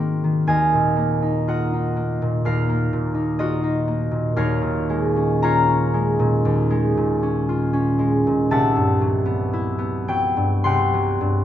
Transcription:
0.00 0.52 G#2 soft
0.00 0.23 D#3 soft
0.00 0.95 A#3 soft
0.00 0.52 C4 soft
0.00 3.39 F#4 soft
0.00 0.23 G#4 soft
0.00 1.36 A#4 medium
0.00 0.52 C5 medium
0.00 0.47 F5 medium
0.24 0.52 D#3 soft
0.47 2.44 D#2 medium
0.47 1.48 D#5 medium
0.47 2.45 F5 medium
0.47 2.14 G#5 medium
0.73 2.21 A#2 soft
0.96 1.95 A#3 soft
1.22 1.72 D#4 soft
1.48 3.38 F4 soft
1.48 2.45 A#4 soft
1.48 3.38 D#5 soft
1.48 4.45 F#5 medium
1.73 3.13 D#4 soft
1.96 2.68 A#3 soft
2.22 2.92 A#2 soft
2.45 4.35 D#2 soft
2.45 3.39 A#4 medium
2.45 4.36 F5 medium
2.69 3.86 A#3 soft
2.93 4.10 A#2 soft
3.14 3.62 D#4 soft
3.39 5.42 F4 soft
3.39 4.43 F#4 medium
3.39 4.36 A#4 medium
3.39 4.42 D#5 medium
3.63 4.42 D#4 soft
3.88 7.78 A#3 soft
4.11 4.42 A#2 soft
4.36 6.44 D#2 medium
4.36 8.27 A#4 medium
4.36 5.43 C#5 medium
4.36 5.43 F5 medium
4.62 6.18 A#2 soft
4.89 5.93 G#3 soft
5.16 5.68 C#4 soft
5.42 7.48 F4 medium
5.42 8.53 C#5 medium
5.42 8.53 F5 medium
5.42 8.52 A#5 medium
5.69 7.21 C#4 soft
5.94 6.69 G#3 soft
6.19 6.96 A#2 soft
6.45 8.52 D#2 medium
6.70 7.98 G#3 soft
6.97 8.26 A#2 soft
7.23 7.72 C#4 soft
7.49 8.54 F4 soft
7.73 8.53 C#4 medium
7.99 8.53 G#3 soft
8.27 8.55 A#2 soft
8.51 10.63 C2 medium
8.51 11.44 E5 medium
8.51 10.64 F#5 medium
8.51 11.24 A5 medium
8.76 10.35 G2 soft
9.01 10.08 F#3 soft
9.26 9.77 B3 medium
9.53 11.44 E4 medium
9.78 11.43 B3 soft
10.08 10.92 F#3 soft
10.08 10.64 G5 medium
10.37 11.20 G2 soft
10.64 11.44 C2 medium
10.64 11.44 F#5 medium
10.64 11.44 G5 medium
10.64 11.44 C6 medium
10.94 11.44 F#3 medium
11.21 11.44 G2 soft

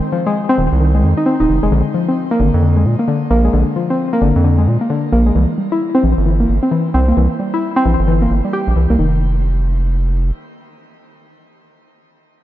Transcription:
0.12 0.26 F3 medium
0.27 0.35 G#3 loud
0.49 0.53 C4 loud
0.58 0.68 D#1 medium
0.58 0.71 D#3 medium
0.72 1.05 C2 loud
0.81 0.90 D#3 medium
0.95 1.01 G#3 medium
1.03 1.14 F2 medium
1.03 1.13 D#3 medium
1.17 1.26 D#4 medium
1.26 1.36 C4 medium
1.40 1.47 D#1 medium
1.40 1.44 D#4 medium
1.49 1.59 F1 medium
1.49 1.59 D#3 medium
1.63 1.69 F1 medium
1.63 1.69 G#3 loud
1.71 1.82 A#1 loud
1.71 1.85 D3 medium
1.94 2.08 F3 medium
2.09 2.14 C4 medium
2.31 2.35 A#3 loud
2.40 2.50 G#1 medium
2.40 2.53 D3 medium
2.54 2.87 F2 loud
2.62 2.72 D3 medium
2.77 2.83 G#3 medium
2.85 2.96 A#2 medium
2.99 3.05 A#3 medium
3.08 3.18 D3 loud
3.31 3.49 A#1 medium
3.31 3.36 A#3 loud
3.45 3.48 G#3 medium
3.53 3.64 A#1 loud
3.53 3.67 D3 medium
3.76 3.89 F3 medium
3.90 3.96 C4 medium
4.13 4.17 A#3 loud
4.22 4.32 G#1 medium
4.22 4.35 D3 medium
4.36 4.68 F2 medium
4.44 4.54 D3 medium
4.58 4.64 G#3 medium
4.67 4.78 A#2 medium
4.81 4.87 A#3 medium
4.90 4.99 D3 loud
5.12 5.31 A#1 medium
5.12 5.18 A#3 loud
5.26 5.30 G#3 medium
5.35 5.46 C2 loud
5.35 5.49 E3 medium
5.58 5.71 G3 medium
5.72 5.78 E4 medium
5.95 5.98 C4 loud
6.03 6.14 A#1 medium
6.03 6.17 E3 medium
6.17 6.45 G1 loud
6.26 6.36 E3 medium
6.40 6.46 A#3 medium
6.49 6.59 G1 medium
6.63 6.69 C4 medium
6.71 6.81 E3 loud
6.94 7.13 C2 medium
6.94 7.00 C4 loud
7.08 7.12 A#3 medium
7.17 7.28 C2 loud
7.17 7.30 E3 medium
7.40 7.53 G3 medium
7.54 7.60 E4 medium
7.76 7.80 C4 loud
7.85 7.96 A#1 medium
7.85 7.99 E3 medium
7.99 8.27 G1 loud
8.08 8.18 E3 medium
8.22 8.28 A#3 medium
8.30 8.41 G1 medium
8.45 8.51 G3 medium
8.53 8.59 G4 medium
8.67 8.74 A#1 medium
8.76 8.87 C2 medium
8.76 8.86 E3 medium
8.90 8.96 C2 medium
8.90 8.98 A#3 medium
8.99 10.31 F1 loud
8.99 9.20 D#3 medium

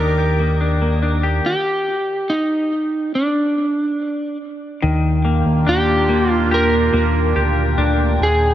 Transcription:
0.00 1.41 D#2 loud
0.00 1.53 D#3 medium
0.00 0.38 A#3 medium
0.00 0.59 D4 medium
0.00 0.18 G4 medium
0.00 1.41 A#4 medium
0.00 1.50 A#4 medium
0.00 1.40 G5 medium
0.00 1.41 D6 medium
0.00 1.40 D#6 medium
0.18 1.22 G4 medium
0.40 0.80 A#3 medium
0.61 1.01 D4 soft
0.82 1.53 A#3 medium
1.02 1.53 D4 medium
1.23 1.53 G4 medium
1.46 2.32 G4 medium
2.30 3.15 D#4 medium
3.15 4.37 D4 medium
4.82 5.43 D#2 loud
4.82 8.54 A#2 medium
4.82 8.32 D#3 medium
4.82 8.17 A#3 medium
4.82 8.18 D4 medium
4.82 8.18 F4 medium
4.82 8.54 G5 medium
5.25 6.08 A#3 medium
5.46 5.66 D#2 medium
5.67 6.90 D#2 medium
5.67 7.77 D4 medium
5.67 6.31 G4 medium
6.09 6.92 A#3 medium
6.31 6.55 F4 medium
6.51 7.35 G4 medium
6.51 8.23 A#4 medium
6.93 7.34 D#2 loud
6.93 8.29 A#3 medium
7.36 7.76 D2 medium
7.36 8.54 G4 medium
7.78 8.18 D2 loud
7.78 8.29 D4 medium
8.19 8.54 D#2 loud
8.19 8.54 D#4 medium
8.19 8.54 G#4 medium
8.19 8.54 A#4 medium
8.19 8.54 C5 medium

